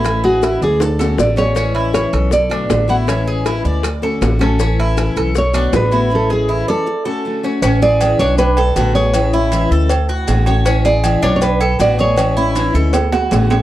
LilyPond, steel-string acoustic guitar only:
\new Staff \with { instrumentName = "Steel-string acoustic guitar" } { \time 4/4 \key a \major \tempo 4 = 158 <e gis cis' e'>4 <e gis cis' e'>4 r8 <a cis' fis'>8 <d a cis' fis'>8 <a cis' fis'>8 | <e gis cis' e'>4 <e gis cis' e'>4 r8 <d a b fis'>8 <d a b fis'>8 <d a b fis'>8 | <e gis cis' e'>4 <e gis cis' e'>4 r8 <a cis' fis'>8 <d a cis' fis'>8 <a cis' fis'>8 | <e cis' e'>4 <e cis' e'>4 r8 <d a b fis'>8 <d a b fis'>8 <d a b fis'>8 |
<e gis cis' e'>4 <e gis cis' e'>4 r8 <a cis' fis'>8 <d a cis' fis'>8 <a cis' fis'>8 | <e gis cis' e'>8 <gis cis' e'>8 <e gis cis' e'>8 <gis cis' e'>8 r4 <b, d a b fis'>8 <a b fis'>8 | <e gis cis' e'>8 <gis cis' e'>8 <e gis cis' e'>8 <gis cis' e'>8 r4 <d a cis' fis'>8 <a cis' fis'>8 | <e gis cis' e'>8 <gis cis' e'>8 <e gis cis' e'>8 <gis cis' e'>8 r4 <b, d a b fis'>8 <a b fis'>8 |
<e gis cis' e'>8 <gis cis' e'>8 <e gis cis' e'>8 <gis cis' e'>8 r4 <d a cis' fis'>8 <a cis' fis'>8 | }